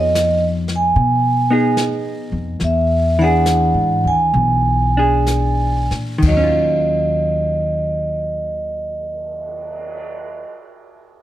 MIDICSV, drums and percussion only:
0, 0, Header, 1, 3, 480
1, 0, Start_track
1, 0, Key_signature, -6, "minor"
1, 0, Tempo, 815217
1, 1530, Tempo, 874636
1, 1531, Time_signature, 4, 2, 24, 8
1, 2490, Tempo, 946372
1, 3450, Tempo, 991736
1, 5861, End_track
2, 0, Start_track
2, 0, Title_t, "Cymbal swell"
2, 3764, Note_on_c, 9, 59, 30
2, 5272, Note_off_c, 9, 59, 0
2, 5861, End_track
3, 0, Start_track
3, 0, Title_t, "Drums"
3, 90, Note_on_c, 9, 38, 36
3, 90, Note_on_c, 9, 44, 47
3, 149, Note_off_c, 9, 38, 0
3, 149, Note_off_c, 9, 44, 0
3, 400, Note_on_c, 9, 38, 24
3, 459, Note_off_c, 9, 38, 0
3, 556, Note_on_c, 9, 25, 28
3, 1042, Note_on_c, 9, 38, 37
3, 1042, Note_on_c, 9, 44, 41
3, 1101, Note_off_c, 9, 38, 0
3, 1101, Note_off_c, 9, 44, 0
3, 1530, Note_off_c, 9, 25, 0
3, 1530, Note_on_c, 9, 25, 32
3, 1530, Note_on_c, 9, 38, 25
3, 1585, Note_off_c, 9, 38, 0
3, 2002, Note_on_c, 9, 38, 37
3, 2002, Note_on_c, 9, 44, 46
3, 2056, Note_off_c, 9, 38, 0
3, 2056, Note_off_c, 9, 44, 0
3, 2485, Note_off_c, 9, 25, 0
3, 2485, Note_on_c, 9, 25, 33
3, 2955, Note_on_c, 9, 38, 32
3, 2955, Note_on_c, 9, 44, 39
3, 3006, Note_off_c, 9, 38, 0
3, 3006, Note_off_c, 9, 44, 0
3, 3281, Note_on_c, 9, 38, 17
3, 3332, Note_off_c, 9, 38, 0
3, 3441, Note_on_c, 9, 51, 45
3, 3443, Note_on_c, 9, 36, 43
3, 3489, Note_off_c, 9, 51, 0
3, 3492, Note_off_c, 9, 36, 0
3, 3833, Note_off_c, 9, 25, 0
3, 5861, End_track
0, 0, End_of_file